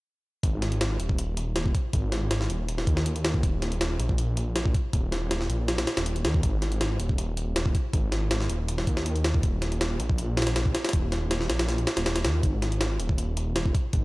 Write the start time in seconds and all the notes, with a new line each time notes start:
0.43 G#1, kick, closed hi-hat
0.62 snare, closed hi-hat
0.72 closed hi-hat
0.81 snare, closed hi-hat
1.00 D#1, closed hi-hat
1.09 kick
1.19 closed hi-hat
1.37 closed hi-hat
1.56 snare, closed hi-hat
1.66 kick
1.75 kick, closed hi-hat
1.93 G#1, kick, closed hi-hat
2.12 snare, closed hi-hat
2.31 snare, closed hi-hat
2.41 snare
2.50 D#1, closed hi-hat
2.69 closed hi-hat
2.78 snare
2.87 D#2, kick, closed hi-hat
2.97 snare
3.06 closed hi-hat
3.16 closed hi-hat
3.25 snare, closed hi-hat
3.34 kick
3.43 D#1, kick, closed hi-hat
3.62 snare, closed hi-hat
3.72 closed hi-hat
3.81 snare, closed hi-hat
3.99 A#1, closed hi-hat
4.09 kick
4.18 closed hi-hat
4.37 closed hi-hat
4.56 snare, closed hi-hat
4.66 kick
4.74 kick, closed hi-hat
4.93 D#1, kick, closed hi-hat
5.12 snare, closed hi-hat
5.31 snare, closed hi-hat
5.41 snare
5.50 A#1, closed hi-hat
5.68 snare, closed hi-hat
5.78 snare, closed hi-hat
5.87 snare, closed hi-hat
5.97 D#1, snare, closed hi-hat
6.06 closed hi-hat
6.16 closed hi-hat
6.25 D#2, snare, closed hi-hat
6.34 kick
6.43 G#1, kick, closed hi-hat
6.62 snare, closed hi-hat
6.72 closed hi-hat
6.81 snare, closed hi-hat
7.00 D#1, closed hi-hat
7.09 kick
7.18 closed hi-hat
7.37 closed hi-hat
7.56 snare, closed hi-hat
7.66 kick
7.75 kick, closed hi-hat
7.93 G#1, kick, closed hi-hat
8.12 snare, closed hi-hat
8.31 snare, closed hi-hat
8.41 snare
8.50 D#1, closed hi-hat
8.69 closed hi-hat
8.78 snare
8.87 D#2, kick, closed hi-hat
8.97 snare
9.06 closed hi-hat
9.16 closed hi-hat
9.24 snare, closed hi-hat
9.34 kick
9.43 D#1, kick, closed hi-hat
9.62 snare, closed hi-hat
9.72 closed hi-hat
9.81 snare, closed hi-hat
10.00 A#1, closed hi-hat
10.10 kick
10.18 closed hi-hat
10.37 snare, closed hi-hat
10.42 snare, closed hi-hat
10.47 snare, closed hi-hat
10.56 snare, closed hi-hat
10.66 kick
10.75 snare, closed hi-hat
10.85 snare, closed hi-hat
10.89 snare, closed hi-hat
10.93 D#1, kick, closed hi-hat
11.12 snare, closed hi-hat
11.31 snare, closed hi-hat
11.41 snare
11.50 A#1, snare, closed hi-hat
11.59 snare, closed hi-hat
11.69 snare, closed hi-hat
11.78 closed hi-hat
11.87 snare, closed hi-hat
11.97 D#1, snare, closed hi-hat
12.06 snare, closed hi-hat
12.16 snare, closed hi-hat
12.25 D#2, snare, closed hi-hat
12.43 G#1, kick, closed hi-hat
12.62 snare, closed hi-hat
12.72 closed hi-hat
12.81 snare, closed hi-hat
12.99 D#1, closed hi-hat
13.09 kick
13.18 closed hi-hat
13.37 closed hi-hat
13.56 snare, closed hi-hat
13.66 kick
13.75 kick, closed hi-hat
13.93 G#1, kick, closed hi-hat